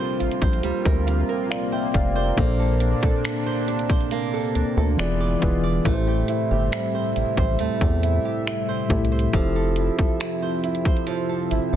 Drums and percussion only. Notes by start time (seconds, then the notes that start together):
0.20 closed hi-hat
0.31 closed hi-hat
0.42 kick, closed hi-hat
0.53 closed hi-hat
0.63 closed hi-hat
0.85 kick
1.08 closed hi-hat
1.52 finger snap
1.94 kick, closed hi-hat
2.37 kick, closed hi-hat
2.80 closed hi-hat
3.03 kick
3.25 finger snap, closed hi-hat
3.68 closed hi-hat
3.79 closed hi-hat
3.90 kick, closed hi-hat
4.01 closed hi-hat
4.11 closed hi-hat
4.55 closed hi-hat
4.99 finger snap
5.42 kick, closed hi-hat
5.85 kick, closed hi-hat
6.28 closed hi-hat
6.72 finger snap, closed hi-hat
7.16 closed hi-hat
7.37 kick
7.59 closed hi-hat
7.81 kick
8.03 closed hi-hat
8.47 finger snap
8.90 kick, closed hi-hat
9.05 closed hi-hat
9.19 closed hi-hat
9.33 kick, closed hi-hat
9.76 closed hi-hat
9.99 kick
10.20 finger snap, closed hi-hat
10.64 closed hi-hat
10.75 closed hi-hat
10.85 kick, closed hi-hat
10.96 closed hi-hat
11.07 closed hi-hat
11.51 closed hi-hat